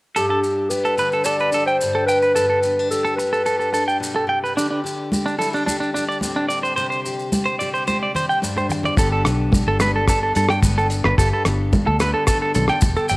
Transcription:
0.16 G2 D4 G4 A4, maracas
0.30 A4
0.43 D4, maracas
0.70 G4 B4, maracas
0.85 A4, maracas
0.97 D3 D4 B4, maracas
1.12 A4, maracas
1.24 G4 A4 D5, maracas
1.39 B4, maracas
1.52 D4 A4, maracas
1.66 C5 G5, maracas
1.81 G2, muted steel-string acoustic guitar stroke, maracas
1.95 A4
2.06 B4 G5, maracas
2.22 B4, maracas
2.35 G2 G4 A4, maracas
2.50 A4
2.63 B3, maracas
2.79 D4
2.91 G4 A4, maracas
3.05 A4, maracas
3.16 D4 B4, muted clean electric guitar stroke, maracas
3.33 A4, maracas
3.46 G4 A4, maracas
3.60 A4, maracas
3.73 D4 A4, maracas
3.88 G5, maracas
4.00 B2, maracas
4.16 A4
4.27 C3 G5
4.44 B4, maracas
4.57 D3 D4 G4, muted conga, maracas
4.71 D4
4.84 G4, maracas
5.12 G4, high conga, maracas
5.26 D4, maracas
5.38 G3 E4 A4, maracas
5.53 D4 G4, maracas
5.66 D4 G4, muted conga, high conga, maracas
5.80 D4, maracas
5.94 D4 G4, maracas
6.09 D5, maracas
6.21 A2 C4, high conga, maracas
6.36 D4
6.49 D5, maracas
6.63 C5, maracas
6.76 C3 G4 C5, muted conga, maracas
6.90 C5, maracas
7.06 G4, maracas
7.19 maracas
7.32 G4, high conga, maracas
7.46 C5, maracas
7.59 G3 G4 D5, maracas
7.74 C5, maracas
7.87 G4 C5, muted conga, high conga, maracas
8.03 D5
8.15 G4 C5, muted conga, low conga, maracas
8.29 G5, maracas
8.42 G2 D4, high conga, maracas
8.56 C5, high conga, maracas
8.69 muted clean electric guitar stroke, low conga, maracas
8.83 D5, low conga, maracas
8.96 G1 G2 D3 B3 D4 G4 A4, kick, muted conga, maracas
9.12 A4
9.24 B1 B3, cross-stick, closed hi-hat, muted conga, maracas
9.52 D4, kick, high conga, maracas
9.67 G1 A4
9.80 B3 B4, cross-stick, closed hi-hat, muted conga, high conga, maracas
9.96 A4
10.08 D4 A4, kick, cross-stick, maracas
10.23 A4
10.35 G2 A4, closed hi-hat, muted conga, maracas
10.49 G5, cross-stick, maracas
10.62 G1 G2 B3, kick, high conga, maracas
10.78 A4, maracas
10.90 closed hi-hat, maracas
11.04 G1 B4, cross-stick
11.18 G1 G2 G4 A4, kick, muted conga, maracas
11.33 A4
11.45 G1 B3, cross-stick, closed hi-hat, muted conga, maracas
11.73 D4, kick, high conga, low conga, maracas
11.87 D2 A4
12.00 D3 B3 B4, cross-stick, closed hi-hat, maracas
12.14 A4
12.27 D4 A4, kick, cross-stick, maracas
12.42 A4
12.54 B1 A4, closed hi-hat, muted conga, high conga, low conga, maracas
12.68 G5, cross-stick, maracas
12.81 E1, kick, high conga, maracas
12.96 A4, maracas
13.09 G1 C3 G5, closed hi-hat, maracas

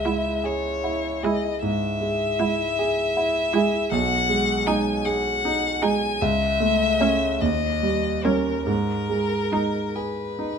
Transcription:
Already playing: C#2 G#3 E5
0.05 G#3 E4
0.44 G#4 C#5
0.84 E4
1.23 G#3 E4 G#4 D#5
1.63 G#2 E5
2.00 G#3
2.39 G#3 E4
2.79 G#4
3.17 E4
3.53 G#3 E4 G#4
3.92 B1 F#5
4.29 G#3
4.67 G#3 D#4 G#5
5.06 G#4 F#5
5.45 D#4
5.82 G#3 D#4 G#4 G#5
6.22 C#2 E5
6.60 A3
7.00 A3 C#4 C#5
7.41 D#2 D#5
7.83 G3
8.24 G3 C#4 A#4
8.67 G#2 A#4
9.09 G#3
9.52 G#3 D#4
9.95 G#4 B4
10.39 D#4

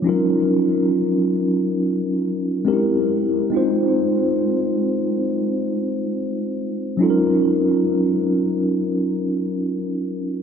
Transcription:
0.02 F3 C#4 D#4
0.07 F#3 F4 A#4
2.65 G#3 C4 D4 G4 A#4
2.73 E4
3.50 G#3 C4 D#4
3.55 F4 C5
6.97 F#3 C#4 D#4
7.02 F4 A4
7.10 A#4

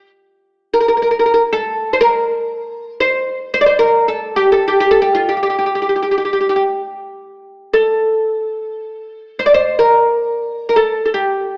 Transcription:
0.74 A#4
0.81 A#4
0.88 A#4
0.97 A#4
1.02 A#4
1.11 A#4
1.20 A#4
1.26 A#4
1.34 A#4
1.53 A4
1.93 C5
2.01 A#4
3.00 C5
3.54 C5
3.61 D5
3.66 C5
3.79 A#4
4.08 A4
4.36 G4
4.52 A4
4.67 G4
4.80 G4
4.91 A4
5.02 G4
5.15 F4
5.29 G4
5.37 G4
5.43 G4
5.50 G4
5.58 G4
5.66 G4
5.75 G4
5.82 G4
5.89 G4
5.96 G4
6.02 G4
6.11 G4
6.18 G4
6.25 G4
6.33 G4
6.41 G4
6.49 G4
6.56 G4
7.73 A4
9.39 C5
9.46 D5
9.54 C5
9.79 A#4
10.69 A#4
10.76 A4
11.06 A4
11.14 G4

